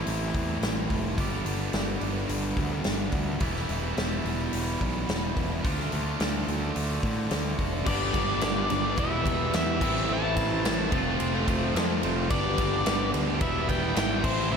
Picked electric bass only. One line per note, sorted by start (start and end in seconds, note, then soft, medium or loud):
0.07 0.29 A1 medium
0.35 0.57 E2 medium
0.62 0.85 A1 medium
0.90 1.18 F1 medium
1.18 1.40 G1 medium
1.45 1.68 G1 medium
1.74 1.96 G1 medium
2.01 2.24 G1 medium
2.29 2.52 G1 medium
2.57 2.80 D2 medium
2.86 3.08 G1 medium
3.13 3.35 D2 medium
3.41 3.64 E1 medium
3.69 3.91 E1 medium
3.97 4.20 E1 medium
4.25 4.47 E1 medium
4.53 4.76 E1 medium
4.81 5.03 B1 medium
5.09 5.31 E1 medium
5.37 5.59 E1 medium
5.65 5.87 D2 medium
5.93 6.15 D2 medium
6.20 6.43 D2 medium
6.48 6.70 D2 medium
6.76 6.98 D2 medium
7.03 7.26 A2 medium
7.31 7.54 D2 medium
7.59 7.81 F1 medium
7.87 8.12 G1 medium
8.14 8.40 G1 medium
8.43 8.68 G1 loud
8.71 8.96 G1 medium
8.98 9.23 E1 medium
9.26 9.51 E1 medium
9.55 9.83 E2 medium
9.81 10.07 A1 loud
10.10 10.35 A1 loud
10.37 10.62 A1 medium
10.64 10.89 A1 loud
10.92 11.17 F1 medium
11.20 11.45 F1 medium
11.48 11.73 F1 medium
11.76 12.00 F2 loud
12.03 12.28 F1 medium
12.31 12.56 G1 loud
12.59 12.83 G1 loud
12.87 13.11 G1 loud
13.14 13.39 D2 medium
13.41 13.66 E1 medium
13.69 13.94 E1 medium
13.96 14.21 G#1 loud
14.24 14.49 A1 medium
14.51 14.57 A1 medium